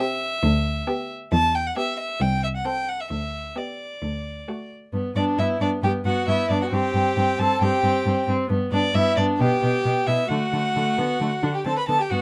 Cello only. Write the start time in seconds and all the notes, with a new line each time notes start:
0.43 D2
1.32 E2
2.20 C2
3.10 D2
4.02 D2
4.93 G2
5.15 G2
5.38 G2
5.60 G2
5.83 G2
6.05 G2
6.27 G2
6.50 G2
6.72 G2
6.95 G2
7.17 G2
7.39 G2
7.61 G2
7.83 G2
8.06 G2
8.28 G2
8.50 G2
8.72 G2
8.94 G2
9.17 G2
9.40 B2
9.63 B2
9.85 B2
10.07 B2
10.30 D3
10.53 D3
10.76 D3
10.98 D3
11.21 D3
11.43 D3
11.66 D3
11.88 D3
12.11 G2